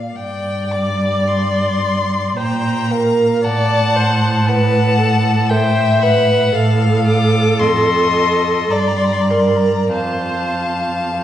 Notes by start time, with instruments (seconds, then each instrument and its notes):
Already playing: violin F5
0.15 cello G2, viola D5, violin D5 G5
0.72 violin D6
1.27 violin C6
2.37 cello A#2, viola C5, violin G5 A#5
2.91 viola A#4, violin F5
3.43 cello A2, viola D5, violin F#5 A5
3.96 viola C5
4.46 viola B4, violin F#5 A5
4.99 viola A4
5.49 viola C5, violin E5 G5
6.03 viola B4, violin F#5
6.54 cello A2, viola A4, violin F5
7.07 violin D6
7.60 cello F2, violin D#5 C6
8.71 cello G2, viola D5, violin D5 A#5
8.78 violin C6
8.88 violin A#5
8.97 violin C6
9.05 violin A#5
9.13 violin C6
9.21 violin A#5
9.30 viola A#4, violin D5 C6
9.40 violin A#5
9.48 violin C6
9.57 violin A#5
9.92 cello F2, viola C5, violin F5 A5
11.16 viola C5